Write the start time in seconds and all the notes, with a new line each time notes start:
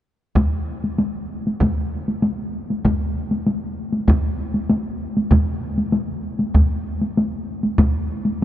0.36 taiko, taiko high
0.84 taiko high
0.98 taiko high
1.47 taiko high
1.61 taiko, taiko high
2.08 taiko high
2.22 taiko high
2.70 taiko high
2.85 taiko, taiko high
3.31 taiko high
3.47 taiko high
3.93 taiko high
4.08 taiko, taiko high
4.54 taiko high
4.70 taiko high
5.17 taiko high
5.31 taiko, taiko high
5.78 taiko high
5.92 taiko high
6.39 taiko high
6.54 taiko, taiko high
7.01 taiko high
7.17 taiko high
7.63 taiko high
7.78 taiko, taiko high
8.25 taiko high